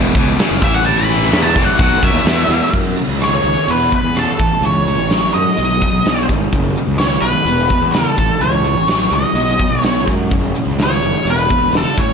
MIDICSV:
0, 0, Header, 1, 5, 480
1, 0, Start_track
1, 0, Tempo, 473186
1, 864, Time_signature, 4, 2, 24, 8
1, 12308, End_track
2, 0, Start_track
2, 0, Title_t, "Lead electric guitar"
2, 0, Program_c, 0, 29
2, 637, Note_on_c, 0, 76, 99
2, 747, Note_off_c, 0, 76, 0
2, 755, Note_on_c, 0, 78, 88
2, 866, Note_off_c, 0, 78, 0
2, 871, Note_on_c, 0, 81, 94
2, 984, Note_off_c, 0, 81, 0
2, 991, Note_on_c, 0, 83, 117
2, 1442, Note_on_c, 0, 81, 89
2, 1451, Note_off_c, 0, 83, 0
2, 1672, Note_off_c, 0, 81, 0
2, 1676, Note_on_c, 0, 78, 113
2, 2036, Note_off_c, 0, 78, 0
2, 2067, Note_on_c, 0, 76, 99
2, 2760, Note_off_c, 0, 76, 0
2, 3287, Note_on_c, 0, 73, 74
2, 3759, Note_on_c, 0, 71, 76
2, 3766, Note_off_c, 0, 73, 0
2, 3995, Note_off_c, 0, 71, 0
2, 4013, Note_on_c, 0, 71, 71
2, 4242, Note_off_c, 0, 71, 0
2, 4249, Note_on_c, 0, 69, 66
2, 4719, Note_on_c, 0, 73, 94
2, 4727, Note_off_c, 0, 69, 0
2, 5412, Note_off_c, 0, 73, 0
2, 5416, Note_on_c, 0, 75, 88
2, 6338, Note_off_c, 0, 75, 0
2, 7086, Note_on_c, 0, 73, 88
2, 7319, Note_on_c, 0, 71, 86
2, 7341, Note_off_c, 0, 73, 0
2, 8010, Note_off_c, 0, 71, 0
2, 8038, Note_on_c, 0, 69, 76
2, 8534, Note_on_c, 0, 73, 89
2, 8545, Note_off_c, 0, 69, 0
2, 9268, Note_off_c, 0, 73, 0
2, 9272, Note_on_c, 0, 75, 91
2, 9922, Note_off_c, 0, 75, 0
2, 9922, Note_on_c, 0, 73, 91
2, 10188, Note_off_c, 0, 73, 0
2, 10985, Note_on_c, 0, 73, 84
2, 11459, Note_off_c, 0, 73, 0
2, 11463, Note_on_c, 0, 71, 78
2, 11933, Note_off_c, 0, 71, 0
2, 11937, Note_on_c, 0, 69, 71
2, 12159, Note_on_c, 0, 73, 88
2, 12168, Note_off_c, 0, 69, 0
2, 12308, Note_off_c, 0, 73, 0
2, 12308, End_track
3, 0, Start_track
3, 0, Title_t, "Distorted electric guitar"
3, 0, Program_c, 1, 30
3, 0, Note_on_c, 1, 40, 82
3, 0, Note_on_c, 1, 47, 91
3, 129, Note_off_c, 1, 40, 0
3, 133, Note_off_c, 1, 47, 0
3, 162, Note_on_c, 1, 40, 85
3, 170, Note_on_c, 1, 47, 82
3, 369, Note_off_c, 1, 40, 0
3, 374, Note_off_c, 1, 47, 0
3, 391, Note_on_c, 1, 40, 89
3, 403, Note_on_c, 1, 49, 87
3, 603, Note_off_c, 1, 40, 0
3, 609, Note_off_c, 1, 49, 0
3, 643, Note_on_c, 1, 45, 80
3, 643, Note_on_c, 1, 52, 91
3, 849, Note_off_c, 1, 45, 0
3, 849, Note_off_c, 1, 52, 0
3, 862, Note_on_c, 1, 45, 92
3, 868, Note_on_c, 1, 52, 97
3, 1078, Note_off_c, 1, 45, 0
3, 1081, Note_off_c, 1, 52, 0
3, 1102, Note_on_c, 1, 45, 78
3, 1112, Note_on_c, 1, 52, 81
3, 1317, Note_off_c, 1, 45, 0
3, 1322, Note_off_c, 1, 52, 0
3, 1332, Note_on_c, 1, 45, 89
3, 1334, Note_on_c, 1, 54, 94
3, 1552, Note_off_c, 1, 45, 0
3, 1553, Note_off_c, 1, 54, 0
3, 1580, Note_on_c, 1, 52, 81
3, 1581, Note_on_c, 1, 45, 78
3, 1796, Note_off_c, 1, 45, 0
3, 1796, Note_off_c, 1, 52, 0
3, 1822, Note_on_c, 1, 47, 79
3, 1827, Note_on_c, 1, 54, 87
3, 2036, Note_off_c, 1, 47, 0
3, 2039, Note_off_c, 1, 54, 0
3, 2061, Note_on_c, 1, 54, 86
3, 2063, Note_on_c, 1, 47, 84
3, 2276, Note_off_c, 1, 54, 0
3, 2277, Note_off_c, 1, 47, 0
3, 2289, Note_on_c, 1, 40, 85
3, 2298, Note_on_c, 1, 47, 100
3, 2509, Note_off_c, 1, 40, 0
3, 2514, Note_off_c, 1, 47, 0
3, 2534, Note_on_c, 1, 40, 88
3, 2536, Note_on_c, 1, 47, 91
3, 2752, Note_off_c, 1, 40, 0
3, 2753, Note_off_c, 1, 47, 0
3, 2765, Note_on_c, 1, 42, 64
3, 2772, Note_on_c, 1, 49, 77
3, 2987, Note_off_c, 1, 42, 0
3, 2991, Note_off_c, 1, 49, 0
3, 3006, Note_on_c, 1, 42, 67
3, 3014, Note_on_c, 1, 49, 76
3, 3228, Note_off_c, 1, 42, 0
3, 3231, Note_off_c, 1, 49, 0
3, 3245, Note_on_c, 1, 42, 66
3, 3255, Note_on_c, 1, 51, 76
3, 3467, Note_off_c, 1, 42, 0
3, 3472, Note_off_c, 1, 51, 0
3, 3494, Note_on_c, 1, 42, 67
3, 3496, Note_on_c, 1, 51, 73
3, 3711, Note_off_c, 1, 42, 0
3, 3713, Note_off_c, 1, 51, 0
3, 3737, Note_on_c, 1, 40, 61
3, 3740, Note_on_c, 1, 47, 71
3, 3953, Note_off_c, 1, 40, 0
3, 3954, Note_off_c, 1, 47, 0
3, 3969, Note_on_c, 1, 40, 58
3, 3977, Note_on_c, 1, 47, 74
3, 4189, Note_off_c, 1, 40, 0
3, 4193, Note_off_c, 1, 47, 0
3, 4209, Note_on_c, 1, 40, 74
3, 4218, Note_on_c, 1, 49, 78
3, 4429, Note_off_c, 1, 40, 0
3, 4434, Note_off_c, 1, 49, 0
3, 4452, Note_on_c, 1, 45, 76
3, 4455, Note_on_c, 1, 52, 72
3, 4671, Note_off_c, 1, 45, 0
3, 4672, Note_off_c, 1, 52, 0
3, 4695, Note_on_c, 1, 45, 71
3, 4703, Note_on_c, 1, 52, 82
3, 4913, Note_off_c, 1, 45, 0
3, 4916, Note_off_c, 1, 52, 0
3, 4947, Note_on_c, 1, 45, 64
3, 4952, Note_on_c, 1, 52, 77
3, 5159, Note_off_c, 1, 45, 0
3, 5161, Note_off_c, 1, 52, 0
3, 5187, Note_on_c, 1, 54, 70
3, 5188, Note_on_c, 1, 45, 67
3, 5399, Note_off_c, 1, 45, 0
3, 5399, Note_off_c, 1, 54, 0
3, 5417, Note_on_c, 1, 45, 70
3, 5425, Note_on_c, 1, 54, 74
3, 5634, Note_off_c, 1, 45, 0
3, 5638, Note_off_c, 1, 54, 0
3, 5658, Note_on_c, 1, 47, 68
3, 5663, Note_on_c, 1, 54, 75
3, 5875, Note_off_c, 1, 47, 0
3, 5877, Note_off_c, 1, 54, 0
3, 5901, Note_on_c, 1, 47, 72
3, 5909, Note_on_c, 1, 54, 77
3, 6116, Note_off_c, 1, 47, 0
3, 6121, Note_off_c, 1, 54, 0
3, 6139, Note_on_c, 1, 47, 78
3, 6142, Note_on_c, 1, 56, 84
3, 6355, Note_off_c, 1, 47, 0
3, 6357, Note_off_c, 1, 56, 0
3, 6384, Note_on_c, 1, 47, 68
3, 6388, Note_on_c, 1, 56, 77
3, 6598, Note_off_c, 1, 47, 0
3, 6600, Note_off_c, 1, 56, 0
3, 6635, Note_on_c, 1, 42, 76
3, 6637, Note_on_c, 1, 49, 92
3, 6844, Note_off_c, 1, 42, 0
3, 6845, Note_off_c, 1, 49, 0
3, 6873, Note_on_c, 1, 42, 69
3, 6875, Note_on_c, 1, 49, 65
3, 7083, Note_off_c, 1, 42, 0
3, 7084, Note_off_c, 1, 49, 0
3, 7105, Note_on_c, 1, 42, 66
3, 7117, Note_on_c, 1, 51, 71
3, 7319, Note_off_c, 1, 42, 0
3, 7325, Note_off_c, 1, 51, 0
3, 7339, Note_on_c, 1, 42, 70
3, 7345, Note_on_c, 1, 51, 80
3, 7556, Note_off_c, 1, 42, 0
3, 7560, Note_off_c, 1, 51, 0
3, 7582, Note_on_c, 1, 40, 68
3, 7586, Note_on_c, 1, 47, 71
3, 7798, Note_off_c, 1, 40, 0
3, 7800, Note_off_c, 1, 47, 0
3, 7823, Note_on_c, 1, 40, 68
3, 7836, Note_on_c, 1, 47, 69
3, 8039, Note_off_c, 1, 40, 0
3, 8045, Note_off_c, 1, 47, 0
3, 8051, Note_on_c, 1, 40, 82
3, 8055, Note_on_c, 1, 49, 92
3, 8273, Note_off_c, 1, 40, 0
3, 8275, Note_off_c, 1, 49, 0
3, 8291, Note_on_c, 1, 45, 73
3, 8296, Note_on_c, 1, 52, 76
3, 8513, Note_off_c, 1, 45, 0
3, 8515, Note_off_c, 1, 52, 0
3, 8530, Note_on_c, 1, 45, 78
3, 8542, Note_on_c, 1, 52, 80
3, 8753, Note_off_c, 1, 45, 0
3, 8759, Note_off_c, 1, 52, 0
3, 8771, Note_on_c, 1, 52, 77
3, 8772, Note_on_c, 1, 45, 71
3, 8990, Note_off_c, 1, 45, 0
3, 8993, Note_off_c, 1, 52, 0
3, 9002, Note_on_c, 1, 45, 70
3, 9005, Note_on_c, 1, 54, 83
3, 9225, Note_off_c, 1, 45, 0
3, 9231, Note_off_c, 1, 54, 0
3, 9238, Note_on_c, 1, 45, 76
3, 9243, Note_on_c, 1, 54, 77
3, 9467, Note_off_c, 1, 45, 0
3, 9469, Note_off_c, 1, 54, 0
3, 9489, Note_on_c, 1, 47, 71
3, 9497, Note_on_c, 1, 54, 80
3, 9712, Note_off_c, 1, 47, 0
3, 9712, Note_off_c, 1, 54, 0
3, 9725, Note_on_c, 1, 54, 77
3, 9726, Note_on_c, 1, 47, 68
3, 9949, Note_off_c, 1, 47, 0
3, 9951, Note_off_c, 1, 54, 0
3, 9961, Note_on_c, 1, 47, 75
3, 9970, Note_on_c, 1, 56, 93
3, 10189, Note_off_c, 1, 47, 0
3, 10194, Note_off_c, 1, 56, 0
3, 10209, Note_on_c, 1, 47, 67
3, 10217, Note_on_c, 1, 56, 79
3, 10433, Note_off_c, 1, 47, 0
3, 10437, Note_off_c, 1, 56, 0
3, 10448, Note_on_c, 1, 42, 84
3, 10449, Note_on_c, 1, 49, 80
3, 10673, Note_off_c, 1, 42, 0
3, 10673, Note_off_c, 1, 49, 0
3, 10702, Note_on_c, 1, 42, 67
3, 10705, Note_on_c, 1, 49, 77
3, 10920, Note_off_c, 1, 42, 0
3, 10921, Note_off_c, 1, 49, 0
3, 10942, Note_on_c, 1, 42, 76
3, 10953, Note_on_c, 1, 51, 75
3, 11160, Note_off_c, 1, 42, 0
3, 11165, Note_off_c, 1, 51, 0
3, 11183, Note_on_c, 1, 42, 63
3, 11187, Note_on_c, 1, 51, 65
3, 11400, Note_off_c, 1, 42, 0
3, 11402, Note_off_c, 1, 51, 0
3, 11420, Note_on_c, 1, 40, 59
3, 11426, Note_on_c, 1, 47, 86
3, 11639, Note_off_c, 1, 40, 0
3, 11642, Note_off_c, 1, 47, 0
3, 11649, Note_on_c, 1, 40, 68
3, 11657, Note_on_c, 1, 47, 75
3, 11874, Note_off_c, 1, 40, 0
3, 11877, Note_off_c, 1, 47, 0
3, 11890, Note_on_c, 1, 49, 86
3, 11893, Note_on_c, 1, 40, 77
3, 12114, Note_off_c, 1, 49, 0
3, 12115, Note_off_c, 1, 40, 0
3, 12138, Note_on_c, 1, 45, 73
3, 12148, Note_on_c, 1, 52, 77
3, 12308, Note_off_c, 1, 45, 0
3, 12308, Note_off_c, 1, 52, 0
3, 12308, End_track
4, 0, Start_track
4, 0, Title_t, "Fingered electric bass"
4, 0, Program_c, 2, 33
4, 0, Note_on_c, 2, 28, 98
4, 132, Note_off_c, 2, 28, 0
4, 155, Note_on_c, 2, 37, 93
4, 371, Note_off_c, 2, 37, 0
4, 516, Note_on_c, 2, 30, 91
4, 621, Note_off_c, 2, 30, 0
4, 626, Note_on_c, 2, 33, 105
4, 1351, Note_off_c, 2, 33, 0
4, 1351, Note_on_c, 2, 40, 96
4, 1579, Note_on_c, 2, 30, 86
4, 1594, Note_off_c, 2, 40, 0
4, 1689, Note_off_c, 2, 30, 0
4, 1819, Note_on_c, 2, 35, 99
4, 1929, Note_off_c, 2, 35, 0
4, 2059, Note_on_c, 2, 42, 102
4, 2162, Note_off_c, 2, 42, 0
4, 2168, Note_on_c, 2, 39, 97
4, 2274, Note_off_c, 2, 39, 0
4, 2280, Note_on_c, 2, 40, 99
4, 2508, Note_off_c, 2, 40, 0
4, 2519, Note_on_c, 2, 40, 101
4, 2638, Note_off_c, 2, 40, 0
4, 2773, Note_on_c, 2, 42, 90
4, 2995, Note_off_c, 2, 42, 0
4, 3121, Note_on_c, 2, 37, 75
4, 3459, Note_off_c, 2, 37, 0
4, 3487, Note_on_c, 2, 37, 84
4, 3602, Note_off_c, 2, 37, 0
4, 3731, Note_on_c, 2, 40, 80
4, 3954, Note_off_c, 2, 40, 0
4, 4089, Note_on_c, 2, 40, 67
4, 4313, Note_off_c, 2, 40, 0
4, 4453, Note_on_c, 2, 33, 86
4, 4565, Note_off_c, 2, 33, 0
4, 4677, Note_on_c, 2, 37, 92
4, 5058, Note_off_c, 2, 37, 0
4, 5058, Note_on_c, 2, 33, 83
4, 5389, Note_off_c, 2, 33, 0
4, 5421, Note_on_c, 2, 42, 85
4, 5530, Note_off_c, 2, 42, 0
4, 5663, Note_on_c, 2, 35, 89
4, 5882, Note_off_c, 2, 35, 0
4, 6017, Note_on_c, 2, 35, 76
4, 6378, Note_on_c, 2, 32, 73
4, 6394, Note_off_c, 2, 35, 0
4, 6599, Note_off_c, 2, 32, 0
4, 6614, Note_on_c, 2, 30, 85
4, 6837, Note_off_c, 2, 30, 0
4, 6972, Note_on_c, 2, 37, 84
4, 7307, Note_off_c, 2, 37, 0
4, 7324, Note_on_c, 2, 35, 84
4, 7442, Note_off_c, 2, 35, 0
4, 7558, Note_on_c, 2, 28, 88
4, 7789, Note_off_c, 2, 28, 0
4, 7917, Note_on_c, 2, 40, 75
4, 8149, Note_off_c, 2, 40, 0
4, 8293, Note_on_c, 2, 33, 91
4, 8408, Note_off_c, 2, 33, 0
4, 8525, Note_on_c, 2, 37, 94
4, 8893, Note_off_c, 2, 37, 0
4, 8893, Note_on_c, 2, 33, 72
4, 9228, Note_off_c, 2, 33, 0
4, 9243, Note_on_c, 2, 37, 82
4, 9363, Note_off_c, 2, 37, 0
4, 9470, Note_on_c, 2, 35, 78
4, 9706, Note_off_c, 2, 35, 0
4, 9846, Note_on_c, 2, 35, 74
4, 10218, Note_off_c, 2, 35, 0
4, 10218, Note_on_c, 2, 42, 81
4, 10441, Note_off_c, 2, 42, 0
4, 10463, Note_on_c, 2, 30, 90
4, 10684, Note_off_c, 2, 30, 0
4, 10810, Note_on_c, 2, 37, 72
4, 11147, Note_off_c, 2, 37, 0
4, 11188, Note_on_c, 2, 30, 75
4, 11297, Note_off_c, 2, 30, 0
4, 11413, Note_on_c, 2, 28, 85
4, 11639, Note_off_c, 2, 28, 0
4, 11780, Note_on_c, 2, 28, 71
4, 12003, Note_off_c, 2, 28, 0
4, 12150, Note_on_c, 2, 33, 89
4, 12258, Note_off_c, 2, 33, 0
4, 12308, End_track
5, 0, Start_track
5, 0, Title_t, "Drums"
5, 152, Note_on_c, 9, 36, 93
5, 155, Note_on_c, 9, 46, 65
5, 254, Note_off_c, 9, 36, 0
5, 257, Note_off_c, 9, 46, 0
5, 396, Note_on_c, 9, 46, 86
5, 406, Note_on_c, 9, 38, 127
5, 497, Note_off_c, 9, 46, 0
5, 508, Note_off_c, 9, 38, 0
5, 630, Note_on_c, 9, 36, 115
5, 638, Note_on_c, 9, 46, 63
5, 731, Note_off_c, 9, 36, 0
5, 740, Note_off_c, 9, 46, 0
5, 870, Note_on_c, 9, 46, 78
5, 972, Note_off_c, 9, 46, 0
5, 1105, Note_on_c, 9, 46, 55
5, 1207, Note_off_c, 9, 46, 0
5, 1235, Note_on_c, 9, 38, 34
5, 1337, Note_off_c, 9, 38, 0
5, 1344, Note_on_c, 9, 46, 73
5, 1354, Note_on_c, 9, 38, 114
5, 1445, Note_off_c, 9, 46, 0
5, 1455, Note_off_c, 9, 38, 0
5, 1581, Note_on_c, 9, 36, 91
5, 1585, Note_on_c, 9, 46, 55
5, 1683, Note_off_c, 9, 36, 0
5, 1686, Note_off_c, 9, 46, 0
5, 1818, Note_on_c, 9, 36, 118
5, 1822, Note_on_c, 9, 46, 80
5, 1919, Note_off_c, 9, 36, 0
5, 1923, Note_off_c, 9, 46, 0
5, 2057, Note_on_c, 9, 36, 87
5, 2058, Note_on_c, 9, 46, 56
5, 2159, Note_off_c, 9, 36, 0
5, 2159, Note_off_c, 9, 46, 0
5, 2292, Note_on_c, 9, 46, 77
5, 2302, Note_on_c, 9, 38, 126
5, 2393, Note_off_c, 9, 46, 0
5, 2403, Note_off_c, 9, 38, 0
5, 2537, Note_on_c, 9, 46, 60
5, 2638, Note_off_c, 9, 46, 0
5, 2772, Note_on_c, 9, 49, 73
5, 2774, Note_on_c, 9, 36, 85
5, 2874, Note_off_c, 9, 49, 0
5, 2875, Note_off_c, 9, 36, 0
5, 3017, Note_on_c, 9, 42, 57
5, 3118, Note_off_c, 9, 42, 0
5, 3256, Note_on_c, 9, 42, 70
5, 3266, Note_on_c, 9, 37, 101
5, 3357, Note_off_c, 9, 42, 0
5, 3368, Note_off_c, 9, 37, 0
5, 3501, Note_on_c, 9, 42, 52
5, 3602, Note_off_c, 9, 42, 0
5, 3735, Note_on_c, 9, 42, 78
5, 3837, Note_off_c, 9, 42, 0
5, 3980, Note_on_c, 9, 36, 73
5, 3982, Note_on_c, 9, 42, 58
5, 4081, Note_off_c, 9, 36, 0
5, 4083, Note_off_c, 9, 42, 0
5, 4218, Note_on_c, 9, 42, 78
5, 4228, Note_on_c, 9, 37, 102
5, 4320, Note_off_c, 9, 42, 0
5, 4330, Note_off_c, 9, 37, 0
5, 4453, Note_on_c, 9, 42, 57
5, 4458, Note_on_c, 9, 36, 89
5, 4555, Note_off_c, 9, 42, 0
5, 4560, Note_off_c, 9, 36, 0
5, 4698, Note_on_c, 9, 42, 60
5, 4799, Note_off_c, 9, 42, 0
5, 4943, Note_on_c, 9, 42, 58
5, 5045, Note_off_c, 9, 42, 0
5, 5174, Note_on_c, 9, 42, 70
5, 5184, Note_on_c, 9, 38, 97
5, 5275, Note_off_c, 9, 42, 0
5, 5285, Note_off_c, 9, 38, 0
5, 5420, Note_on_c, 9, 42, 54
5, 5521, Note_off_c, 9, 42, 0
5, 5657, Note_on_c, 9, 42, 74
5, 5758, Note_off_c, 9, 42, 0
5, 5897, Note_on_c, 9, 42, 52
5, 5903, Note_on_c, 9, 36, 76
5, 5998, Note_off_c, 9, 42, 0
5, 6004, Note_off_c, 9, 36, 0
5, 6145, Note_on_c, 9, 42, 77
5, 6155, Note_on_c, 9, 38, 112
5, 6246, Note_off_c, 9, 42, 0
5, 6256, Note_off_c, 9, 38, 0
5, 6381, Note_on_c, 9, 42, 53
5, 6383, Note_on_c, 9, 36, 77
5, 6482, Note_off_c, 9, 42, 0
5, 6484, Note_off_c, 9, 36, 0
5, 6621, Note_on_c, 9, 36, 86
5, 6623, Note_on_c, 9, 42, 71
5, 6723, Note_off_c, 9, 36, 0
5, 6725, Note_off_c, 9, 42, 0
5, 6857, Note_on_c, 9, 42, 55
5, 6959, Note_off_c, 9, 42, 0
5, 7088, Note_on_c, 9, 42, 77
5, 7098, Note_on_c, 9, 38, 100
5, 7190, Note_off_c, 9, 42, 0
5, 7200, Note_off_c, 9, 38, 0
5, 7335, Note_on_c, 9, 42, 57
5, 7436, Note_off_c, 9, 42, 0
5, 7572, Note_on_c, 9, 42, 82
5, 7673, Note_off_c, 9, 42, 0
5, 7804, Note_on_c, 9, 42, 59
5, 7814, Note_on_c, 9, 36, 76
5, 7905, Note_off_c, 9, 42, 0
5, 7915, Note_off_c, 9, 36, 0
5, 8051, Note_on_c, 9, 42, 85
5, 8061, Note_on_c, 9, 38, 112
5, 8153, Note_off_c, 9, 42, 0
5, 8163, Note_off_c, 9, 38, 0
5, 8298, Note_on_c, 9, 36, 96
5, 8299, Note_on_c, 9, 42, 59
5, 8399, Note_off_c, 9, 36, 0
5, 8400, Note_off_c, 9, 42, 0
5, 8530, Note_on_c, 9, 42, 67
5, 8632, Note_off_c, 9, 42, 0
5, 8776, Note_on_c, 9, 42, 56
5, 8878, Note_off_c, 9, 42, 0
5, 9011, Note_on_c, 9, 42, 74
5, 9021, Note_on_c, 9, 38, 103
5, 9112, Note_off_c, 9, 42, 0
5, 9122, Note_off_c, 9, 38, 0
5, 9247, Note_on_c, 9, 42, 51
5, 9348, Note_off_c, 9, 42, 0
5, 9486, Note_on_c, 9, 42, 79
5, 9588, Note_off_c, 9, 42, 0
5, 9730, Note_on_c, 9, 42, 54
5, 9733, Note_on_c, 9, 36, 76
5, 9831, Note_off_c, 9, 42, 0
5, 9834, Note_off_c, 9, 36, 0
5, 9977, Note_on_c, 9, 42, 75
5, 9987, Note_on_c, 9, 38, 116
5, 10079, Note_off_c, 9, 42, 0
5, 10089, Note_off_c, 9, 38, 0
5, 10220, Note_on_c, 9, 36, 80
5, 10226, Note_on_c, 9, 42, 56
5, 10322, Note_off_c, 9, 36, 0
5, 10328, Note_off_c, 9, 42, 0
5, 10463, Note_on_c, 9, 36, 93
5, 10466, Note_on_c, 9, 42, 66
5, 10564, Note_off_c, 9, 36, 0
5, 10568, Note_off_c, 9, 42, 0
5, 10714, Note_on_c, 9, 42, 58
5, 10815, Note_off_c, 9, 42, 0
5, 10942, Note_on_c, 9, 42, 75
5, 10952, Note_on_c, 9, 38, 100
5, 11044, Note_off_c, 9, 42, 0
5, 11054, Note_off_c, 9, 38, 0
5, 11193, Note_on_c, 9, 42, 52
5, 11294, Note_off_c, 9, 42, 0
5, 11431, Note_on_c, 9, 42, 82
5, 11532, Note_off_c, 9, 42, 0
5, 11670, Note_on_c, 9, 36, 82
5, 11676, Note_on_c, 9, 42, 54
5, 11772, Note_off_c, 9, 36, 0
5, 11777, Note_off_c, 9, 42, 0
5, 11911, Note_on_c, 9, 42, 92
5, 11921, Note_on_c, 9, 38, 103
5, 12013, Note_off_c, 9, 42, 0
5, 12023, Note_off_c, 9, 38, 0
5, 12149, Note_on_c, 9, 36, 104
5, 12153, Note_on_c, 9, 42, 67
5, 12251, Note_off_c, 9, 36, 0
5, 12254, Note_off_c, 9, 42, 0
5, 12308, End_track
0, 0, End_of_file